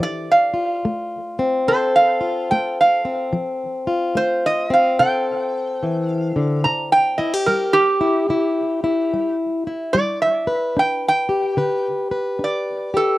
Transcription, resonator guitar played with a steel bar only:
0, 0, Header, 1, 2, 480
1, 0, Start_track
1, 0, Tempo, 825309
1, 20, Time_signature, 4, 2, 24, 8
1, 7665, End_track
2, 0, Start_track
2, 0, Title_t, "Resonator guitar played with a steel bar"
2, 0, Program_c, 0, 25
2, 17, Note_on_c, 0, 74, 104
2, 174, Note_off_c, 0, 74, 0
2, 183, Note_on_c, 0, 77, 96
2, 438, Note_off_c, 0, 77, 0
2, 978, Note_on_c, 0, 72, 95
2, 1136, Note_off_c, 0, 72, 0
2, 1138, Note_on_c, 0, 77, 89
2, 1452, Note_off_c, 0, 77, 0
2, 1458, Note_on_c, 0, 79, 85
2, 1617, Note_off_c, 0, 79, 0
2, 1632, Note_on_c, 0, 77, 87
2, 1884, Note_off_c, 0, 77, 0
2, 2425, Note_on_c, 0, 72, 97
2, 2581, Note_off_c, 0, 72, 0
2, 2594, Note_on_c, 0, 75, 104
2, 2746, Note_off_c, 0, 75, 0
2, 2754, Note_on_c, 0, 77, 88
2, 2901, Note_off_c, 0, 77, 0
2, 2903, Note_on_c, 0, 79, 103
2, 3543, Note_off_c, 0, 79, 0
2, 3543, Note_on_c, 0, 77, 103
2, 3842, Note_off_c, 0, 77, 0
2, 3862, Note_on_c, 0, 82, 93
2, 4020, Note_off_c, 0, 82, 0
2, 4026, Note_on_c, 0, 79, 106
2, 4175, Note_on_c, 0, 75, 81
2, 4182, Note_off_c, 0, 79, 0
2, 4336, Note_off_c, 0, 75, 0
2, 4341, Note_on_c, 0, 70, 92
2, 4497, Note_on_c, 0, 67, 120
2, 4499, Note_off_c, 0, 70, 0
2, 5438, Note_off_c, 0, 67, 0
2, 5775, Note_on_c, 0, 74, 115
2, 5936, Note_off_c, 0, 74, 0
2, 5942, Note_on_c, 0, 76, 98
2, 6254, Note_off_c, 0, 76, 0
2, 6277, Note_on_c, 0, 79, 93
2, 6426, Note_off_c, 0, 79, 0
2, 6447, Note_on_c, 0, 79, 116
2, 6901, Note_off_c, 0, 79, 0
2, 7235, Note_on_c, 0, 74, 82
2, 7539, Note_off_c, 0, 74, 0
2, 7541, Note_on_c, 0, 69, 98
2, 7665, Note_off_c, 0, 69, 0
2, 7665, End_track
0, 0, End_of_file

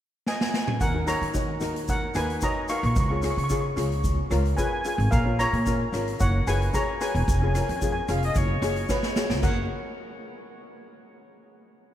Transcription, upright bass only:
0, 0, Header, 1, 2, 480
1, 0, Start_track
1, 0, Key_signature, 6, "major"
1, 0, Tempo, 538600
1, 719, Time_signature, 4, 2, 24, 8
1, 10642, End_track
2, 0, Start_track
2, 0, Title_t, "Upright bass"
2, 0, Program_c, 0, 32
2, 719, Note_on_c, 0, 39, 93
2, 996, Note_off_c, 0, 39, 0
2, 1080, Note_on_c, 0, 51, 86
2, 1351, Note_off_c, 0, 51, 0
2, 1435, Note_on_c, 0, 39, 86
2, 1801, Note_off_c, 0, 39, 0
2, 1916, Note_on_c, 0, 39, 99
2, 2100, Note_off_c, 0, 39, 0
2, 2522, Note_on_c, 0, 34, 102
2, 2611, Note_off_c, 0, 34, 0
2, 2639, Note_on_c, 0, 37, 94
2, 2917, Note_off_c, 0, 37, 0
2, 3003, Note_on_c, 0, 49, 85
2, 3274, Note_off_c, 0, 49, 0
2, 3357, Note_on_c, 0, 37, 94
2, 3724, Note_off_c, 0, 37, 0
2, 3837, Note_on_c, 0, 37, 97
2, 4021, Note_off_c, 0, 37, 0
2, 4439, Note_on_c, 0, 32, 100
2, 4530, Note_off_c, 0, 32, 0
2, 4565, Note_on_c, 0, 34, 104
2, 4842, Note_off_c, 0, 34, 0
2, 4924, Note_on_c, 0, 46, 94
2, 5196, Note_off_c, 0, 46, 0
2, 5280, Note_on_c, 0, 32, 79
2, 5464, Note_off_c, 0, 32, 0
2, 5530, Note_on_c, 0, 30, 104
2, 5710, Note_off_c, 0, 30, 0
2, 5767, Note_on_c, 0, 30, 89
2, 5948, Note_off_c, 0, 30, 0
2, 6368, Note_on_c, 0, 28, 104
2, 6457, Note_off_c, 0, 28, 0
2, 6487, Note_on_c, 0, 29, 91
2, 6764, Note_off_c, 0, 29, 0
2, 6852, Note_on_c, 0, 41, 84
2, 7121, Note_off_c, 0, 41, 0
2, 7206, Note_on_c, 0, 29, 91
2, 7388, Note_off_c, 0, 29, 0
2, 7448, Note_on_c, 0, 30, 102
2, 7629, Note_off_c, 0, 30, 0
2, 7678, Note_on_c, 0, 30, 92
2, 7863, Note_off_c, 0, 30, 0
2, 8287, Note_on_c, 0, 37, 95
2, 8375, Note_off_c, 0, 37, 0
2, 8403, Note_on_c, 0, 30, 92
2, 8626, Note_off_c, 0, 30, 0
2, 10642, End_track
0, 0, End_of_file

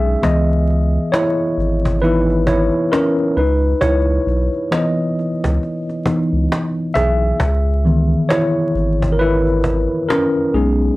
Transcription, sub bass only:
0, 0, Header, 1, 2, 480
1, 0, Start_track
1, 0, Tempo, 895522
1, 127, Time_signature, 4, 2, 24, 8
1, 5877, End_track
2, 0, Start_track
2, 0, Title_t, "Sub bass"
2, 0, Program_c, 0, 38
2, 0, Note_on_c, 0, 35, 96
2, 87, Note_off_c, 0, 35, 0
2, 125, Note_on_c, 0, 37, 104
2, 527, Note_off_c, 0, 37, 0
2, 843, Note_on_c, 0, 32, 93
2, 1447, Note_off_c, 0, 32, 0
2, 1804, Note_on_c, 0, 37, 98
2, 2006, Note_off_c, 0, 37, 0
2, 2045, Note_on_c, 0, 37, 89
2, 2246, Note_off_c, 0, 37, 0
2, 2286, Note_on_c, 0, 35, 94
2, 2406, Note_off_c, 0, 35, 0
2, 2916, Note_on_c, 0, 37, 89
2, 2995, Note_off_c, 0, 37, 0
2, 3391, Note_on_c, 0, 37, 91
2, 3471, Note_off_c, 0, 37, 0
2, 3727, Note_on_c, 0, 35, 86
2, 3927, Note_off_c, 0, 35, 0
2, 3967, Note_on_c, 0, 37, 102
2, 4368, Note_off_c, 0, 37, 0
2, 4688, Note_on_c, 0, 32, 96
2, 5290, Note_off_c, 0, 32, 0
2, 5648, Note_on_c, 0, 35, 96
2, 5848, Note_off_c, 0, 35, 0
2, 5877, End_track
0, 0, End_of_file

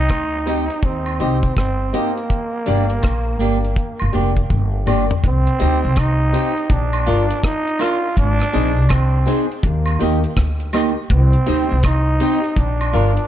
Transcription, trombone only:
0, 0, Header, 1, 2, 480
1, 0, Start_track
1, 0, Key_signature, -3, "minor"
1, 0, Tempo, 733496
1, 1502, Time_signature, 4, 2, 24, 8
1, 8687, End_track
2, 0, Start_track
2, 0, Title_t, "Trombone"
2, 0, Program_c, 0, 57
2, 0, Note_on_c, 0, 63, 121
2, 552, Note_on_c, 0, 60, 89
2, 562, Note_off_c, 0, 63, 0
2, 1027, Note_off_c, 0, 60, 0
2, 1033, Note_on_c, 0, 60, 92
2, 1276, Note_on_c, 0, 58, 88
2, 1286, Note_off_c, 0, 60, 0
2, 3192, Note_off_c, 0, 58, 0
2, 3445, Note_on_c, 0, 60, 103
2, 3920, Note_on_c, 0, 63, 106
2, 3930, Note_off_c, 0, 60, 0
2, 4398, Note_on_c, 0, 62, 100
2, 4407, Note_off_c, 0, 63, 0
2, 4878, Note_on_c, 0, 63, 108
2, 4887, Note_off_c, 0, 62, 0
2, 5114, Note_on_c, 0, 65, 107
2, 5124, Note_off_c, 0, 63, 0
2, 5350, Note_off_c, 0, 65, 0
2, 5356, Note_on_c, 0, 62, 123
2, 5843, Note_on_c, 0, 60, 97
2, 5853, Note_off_c, 0, 62, 0
2, 6154, Note_off_c, 0, 60, 0
2, 6312, Note_on_c, 0, 58, 74
2, 6762, Note_off_c, 0, 58, 0
2, 7274, Note_on_c, 0, 60, 96
2, 7758, Note_on_c, 0, 63, 106
2, 7768, Note_off_c, 0, 60, 0
2, 8238, Note_on_c, 0, 62, 94
2, 8247, Note_off_c, 0, 63, 0
2, 8687, Note_off_c, 0, 62, 0
2, 8687, End_track
0, 0, End_of_file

